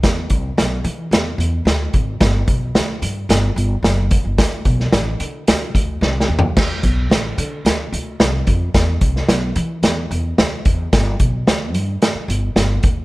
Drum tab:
CC |------------------------------------------------|------------------------------------------------|------------------------------------------------|x-----------------------------------------------|
HH |x-----x-----x-----x-----x-----x-----x-----x-----|x-----x-----x-----x-----x-----x-----x-----x-----|x-----x-----x-----x-----x-----x-----------------|------x-----x-----x-----x-----x-----x-----x-----|
SD |o-----------o-----------o-----------o-----------|o-----------o-----------o-----------o-----------|o--------o--o-----------o-----------o---o-------|o-----------o-----------o-----------o-----------|
FT |------------------------------------------------|------------------------------------------------|--------------------------------------------o---|------------------------------------------------|
BD |o-----o-----------------------------------o-----|o-----o-----------------------------------o-----|o-----o-----------------------o-----------------|o-----o-----------------------------------o-----|

CC |------------------------------------------------|------------------------------------------------|
HH |x-----x-----x-----x-----x-----x-----x-----x-----|x-----x-----x-----x-----x-----x-----x-----x-----|
SD |o--------o--o-----------o-----------o-----------|o-----------o-----------o-----------o-----------|
FT |------------------------------------------------|------------------------------------------------|
BD |o-----o-----------------------------------o-----|o-----o-----------------------------------o-----|